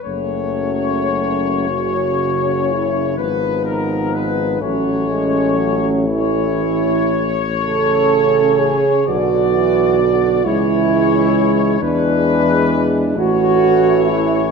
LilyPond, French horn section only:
\new Staff \with { instrumentName = "French horn section" } { \time 6/8 \key fis \minor \tempo 4. = 42 cis'4. fis'4 e'8 | dis'4. cis'4. | e'4. a'4 gis'8 | fis'4. e'4. |
d'4. fis'4 e'8 | }